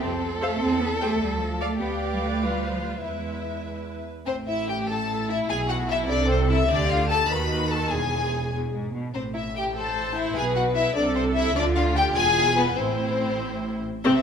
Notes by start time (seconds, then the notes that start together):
0.01 F2 C4 A4
0.41 A3 A4 C5 F5
0.61 E2 C4
0.81 B3
1.00 A3 G4 C5 G5
1.20 D2 G3
1.41 F3
1.61 A3 A4 D5 F5
1.80 D2 B3 G4 B4 D5 F5
2.12 G3
2.21 A3
2.42 G3 F4
2.62 C5
2.73 F3
2.83 G3
3.03 E2 G#3 E4 B4 E5
4.27 A1 A2 C4 C5
4.47 E4 E5
4.68 G4 G5
4.88 E4 A4 A5
5.29 E4 E5
5.49 B1 B2 G#4 G#5
5.69 F#4 F#5
5.89 E4 E5
6.09 C2 C3 D4 A4 D5
6.29 C4 C5
6.49 E4 E5
6.68 D2 D3 D4 G4 D5
6.89 F4 F5
7.08 A4 A5
7.28 D#2 D#3 F#4 B4 B5
7.69 A4 A5
7.90 E1 E2 G#4 G#5
8.53 E2
8.73 G#2
8.94 B2
9.14 A1 A2 C4 C5
9.35 E4 E5
9.55 G4 G5
9.75 A4 C5 A5
10.15 E4 E5
10.35 B1 B2 G#4 B4 G#5
10.55 F#4 F#5
10.75 E4 E5
10.95 C2 C3 D4 A4 D5
11.15 C4 C5
11.35 E4 E5
11.55 D2 D3 D4 F4 D5
11.76 F4 F5
11.96 G4 G5
12.16 E1 E2 G#4 G#5
12.58 B3 B4
12.78 A1 A2 C4 E4 C5
14.04 A1 C3 C4 C5 E5